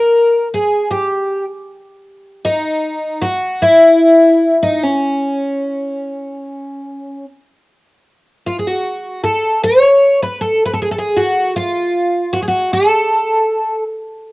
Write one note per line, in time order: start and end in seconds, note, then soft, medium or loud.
0.00 0.47 A#4 medium
0.54 0.90 G#4 medium
0.91 1.43 G4 medium
2.45 3.24 D#4 medium
3.22 3.62 F#4 loud
3.62 4.56 E4 loud
4.63 4.83 D#4 medium
4.83 7.24 C#4 medium
8.46 8.59 F4 medium
8.59 8.67 G#4 medium
8.67 9.23 F#4 medium
9.24 9.63 A4 medium
9.64 10.22 C#5 loud
10.22 10.41 B4 medium
10.41 10.64 A4 medium
10.66 10.73 B4 medium
10.74 10.82 A4 medium
10.82 10.91 G#4 medium
10.91 10.98 A4 medium
10.99 11.19 G#4 medium
11.17 11.56 F#4 medium
11.56 12.36 F4 medium
12.33 12.41 F#4 medium
12.42 12.47 G#4 medium
12.48 12.73 F#4 medium
12.73 13.83 A4 medium